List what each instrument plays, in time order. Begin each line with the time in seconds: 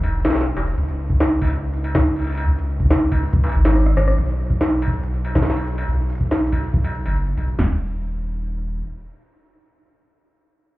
Already playing: analog synth bass E1
0.03 closed hi-hat, struck metal
0.07 closed hi-hat
0.11 closed hi-hat, cabasa
0.17 cabasa
0.19 cabasa
0.22 analog synth bass B1, snare, closed hi-hat, cabasa, struck metal
0.30 snare
0.35 snare, closed hi-hat
0.41 snare
0.46 closed hi-hat
0.57 analog synth bass E1, struck metal
0.67 closed hi-hat, cabasa
0.70 cabasa
0.73 cabasa
0.75 analog synth bass C#2, closed hi-hat, cabasa
0.89 closed hi-hat
1.10 kick, closed hi-hat
1.20 snare, closed hi-hat, struck metal
1.31 closed hi-hat
1.42 kick, struck metal
1.44 struck metal
1.47 struck metal
1.50 closed hi-hat, struck metal
1.74 closed hi-hat
1.84 struck metal
1.95 kick, snare, struck metal
2.06 closed hi-hat
2.16 struck metal
2.19 struck metal
2.21 struck metal
2.24 cabasa, struck metal
2.27 struck metal
2.29 struck metal
2.32 struck metal
2.35 struck metal
2.37 struck metal
2.48 analog synth bass C#2, closed hi-hat
2.59 closed hi-hat, cabasa
2.80 kick, closed hi-hat
2.85 kick, closed hi-hat
2.91 kick, snare, closed hi-hat
2.96 kick, closed hi-hat
3.01 closed hi-hat
3.12 kick, struck metal
3.22 closed hi-hat
3.25 closed hi-hat
3.28 closed hi-hat
3.30 closed hi-hat
3.33 kick, closed hi-hat
3.44 closed hi-hat, struck metal
3.46 struck metal
3.49 struck metal
3.52 analog synth bass G#1, cabasa, struck metal
3.60 cabasa
3.65 snare, cabasa, struck metal
3.70 cabasa
3.76 cross-stick, closed hi-hat
3.86 cross-stick, closed hi-hat
3.97 analog synth bass G#1, cross-stick, struck metal
4.08 cross-stick, closed hi-hat, cabasa
4.10 closed hi-hat
4.13 closed hi-hat
4.16 closed hi-hat
4.18 analog synth bass B1, closed hi-hat
4.21 closed hi-hat
4.24 closed hi-hat
4.26 closed hi-hat
4.29 closed hi-hat
4.50 kick, closed hi-hat
4.61 snare, closed hi-hat
4.71 closed hi-hat
4.82 closed hi-hat, struck metal
4.88 kick
4.93 closed hi-hat
5.03 closed hi-hat
5.14 closed hi-hat
5.25 struck metal
5.35 kick, snare
5.42 snare, closed hi-hat
5.50 snare
5.57 closed hi-hat, struck metal
5.67 closed hi-hat
5.78 struck metal
5.89 analog synth bass B1, closed hi-hat
6.10 closed hi-hat
6.13 closed hi-hat
6.15 closed hi-hat
6.18 kick, closed hi-hat
6.21 closed hi-hat
6.23 closed hi-hat
6.26 closed hi-hat
6.29 snare, closed hi-hat
6.31 closed hi-hat
6.42 closed hi-hat
6.47 closed hi-hat
6.52 kick, struck metal
6.63 closed hi-hat
6.74 kick, closed hi-hat
6.84 closed hi-hat, struck metal
6.95 closed hi-hat
7.06 analog synth bass F#1, closed hi-hat, struck metal
7.16 closed hi-hat
7.27 closed hi-hat
7.37 analog synth bass B1, closed hi-hat, struck metal
7.48 closed hi-hat
7.59 analog synth bass D#1, snare, floor tom, crash